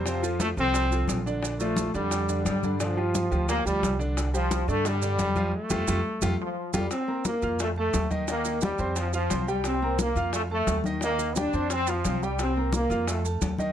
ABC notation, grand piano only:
X:1
M:4/4
L:1/8
Q:1/4=175
K:Fmix
V:1 name="Grand piano"
[C,Cc] [F,FA]2 [F,FA]2 [F,FA]2 [D,Dd]- | [D,Dd] [F,Fd]2 [D,Dd]2 [D,Dd]2 [D,Dd] | [D,Dd] [F,FG]2 [F,FG]2 [F,FG]2 [D,Dd]- | [D,Dd] [G,Gc]2 [D,Dd]2 [D,Dd]2 [F,Ff] |
z [FGA] [FGA] z [FGA] z2 [FGA] | z [B,Bb]2 [Fff']2 [A,Aa]2 [E,Ee] | [E,Ee]2 [G,Gg] [Ccc']2 [Fff'] [Ccc'] [G,Gg]- | [G,Gg] [B,Bb]2 [Fff']2 [A,Aa]2 [E,Ee] |
[E,Ee]2 [G,Gg] [Ccc']2 [Fff'] [Ccc'] [G,Gg]- | [G,Gg] [B,Bb]2 [Fff']2 [A,Aa]2 [E,Ee] |]